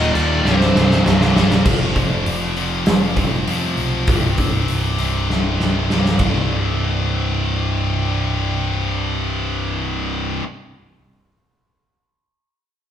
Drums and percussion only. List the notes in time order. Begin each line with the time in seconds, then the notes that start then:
0.01 snare
0.15 crash
0.45 snare
0.61 snare
0.76 snare
0.91 snare
1.06 snare
1.21 snare
1.36 snare
1.50 snare
1.65 kick, crash
1.96 kick, open hi-hat
2.26 open hi-hat
2.57 open hi-hat
2.86 snare, open hi-hat
3.16 kick, open hi-hat
3.48 open hi-hat
3.77 open hi-hat
4.07 kick, open hi-hat
4.38 kick, open hi-hat
4.68 open hi-hat
4.99 open hi-hat
5.30 snare
5.60 snare
5.90 snare
6.06 snare
6.19 kick, crash